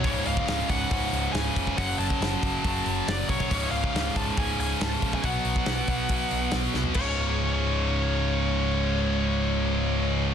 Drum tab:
CC |----------------|----------------|----------------|----------------|
HH |o-o-o-o-o-o-o-o-|o-o-o-o-o-o-o-o-|o-o-o-o-o-o-o-o-|o-o-o-o-o-o-o---|
SD |----o-------o---|----o-------o---|----o-------o---|----o-------o-o-|
FT |----------------|----------------|----------------|---------------o|
BD |o--o--o-o-----oo|o--o--o-o-----oo|o--o--o-o-----oo|o--o--o-o-------|

CC |x---------------|----------------|
HH |----------------|----------------|
SD |----------------|----------------|
FT |----------------|----------------|
BD |o---------------|----------------|